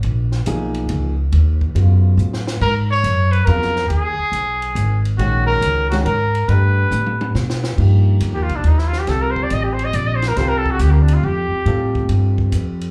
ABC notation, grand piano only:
X:1
M:3/4
L:1/8
Q:"Swing" 1/4=139
K:G#dor
V:1 name="Grand piano"
z2 [E,A,DG]3 z | z2 [C,F,B,E]3 z | z4 [C,F,B,E] z | z6 |
[D,G,CF]3 [D,G,CF] z2 | [=A,=D=GB]4- [A,DGB] z | [K:Cdor] [F,B,EG]4- [F,B,EG] z | [G,CFA]4- [G,CFA] z |
[G,CFA]4- [G,CFA] z | [G,CFA]4- [G,CFA] z |]